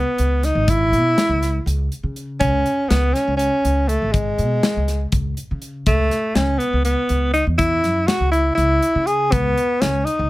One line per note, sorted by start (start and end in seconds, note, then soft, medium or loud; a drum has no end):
0.00 0.46 B3 medium
0.18 0.50 C#2 medium
0.18 closed hi-hat medium
0.43 0.71 D#4 medium
0.43 snare soft
0.43 closed hi-hat medium
0.55 0.93 G#1 medium
0.68 1.68 E4 medium
0.68 kick loud
0.68 closed hi-hat medium
0.92 1.13 B2 medium
0.92 closed hi-hat medium
1.18 snare medium
1.18 closed hi-hat medium
1.29 1.60 C#2 medium
1.43 snare soft
1.43 closed hi-hat medium
1.66 1.87 C#2 medium
1.66 closed hi-hat medium
1.92 closed hi-hat medium
2.03 2.43 C#3 medium
2.16 closed hi-hat medium
2.40 2.62 C#2 medium
2.40 2.90 C#4 medium
2.40 kick loud
2.40 closed hi-hat medium
2.66 closed hi-hat soft
2.89 3.11 C#2 medium
2.89 3.15 B3 medium
2.89 snare medium
2.89 closed hi-hat medium
3.13 3.36 C#4 medium
3.13 snare soft
3.13 closed hi-hat medium
3.28 3.48 C#2 medium
3.37 3.90 C#4 medium
3.37 closed hi-hat medium
3.64 3.95 C#2 medium
3.64 closed hi-hat medium
3.88 4.14 A3 medium
3.88 closed hi-hat medium
4.02 4.40 G#1 medium
4.12 5.12 G#3 medium
4.12 kick medium
4.12 closed hi-hat medium
4.38 4.59 B2 medium
4.38 closed hi-hat medium
4.63 snare loud
4.63 closed hi-hat medium
4.76 5.07 C#2 medium
4.88 snare soft
4.88 closed hi-hat medium
5.12 5.33 C#2 medium
5.12 kick medium
5.12 closed hi-hat medium
5.37 closed hi-hat medium
5.51 5.88 C#3 medium
5.62 closed hi-hat medium
5.86 6.07 C#2 medium
5.86 6.37 A3 medium
5.86 kick loud
5.86 closed hi-hat medium
6.11 snare soft
6.11 closed hi-hat soft
6.35 6.56 C#2 medium
6.35 6.60 C#4 medium
6.35 snare medium
6.35 closed hi-hat medium
6.59 6.84 B3 medium
6.59 closed hi-hat soft
6.73 6.94 C#2 medium
6.85 7.31 B3 medium
6.85 closed hi-hat medium
7.09 7.41 C#2 medium
7.09 closed hi-hat medium
7.34 7.45 D#4 medium
7.34 closed hi-hat medium
7.47 7.85 E2 medium
7.58 8.08 E4 medium
7.58 kick loud
7.58 closed hi-hat medium
7.84 8.05 F#2 medium
7.84 snare soft
7.84 closed hi-hat soft
8.07 8.31 F#4 medium
8.07 snare medium
8.07 closed hi-hat medium
8.20 8.51 C#2 medium
8.31 8.55 E4 medium
8.31 closed hi-hat medium
8.55 8.78 C#2 medium
8.55 9.08 E4 medium
8.55 closed hi-hat medium
8.82 closed hi-hat medium
8.95 9.34 C#3 medium
9.07 9.34 G#4 medium
9.07 closed hi-hat medium
9.32 9.53 C#2 medium
9.32 9.83 B3 medium
9.32 kick medium
9.32 closed hi-hat medium
9.58 closed hi-hat soft
9.81 10.02 C#2 medium
9.81 10.06 C#4 medium
9.81 snare medium
9.81 closed hi-hat medium
10.05 10.30 D#4 medium
10.05 closed hi-hat medium
10.19 10.30 C#2 medium